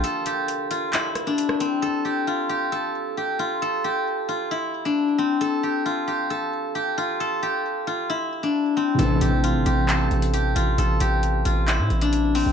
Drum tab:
HH |x-x-x-x-x-x-x-x-|----------------|----------------|----------------|
CP |--------x-------|----------------|----------------|----------------|
SD |----------r--r--|----------------|----------------|----------------|

HH |----------------|x-x-x-x-x-xxx-x-|x-x-x-x-x-xxx-o-|
CP |----------------|--------x-------|--------x-------|
SD |----------------|----------------|----------------|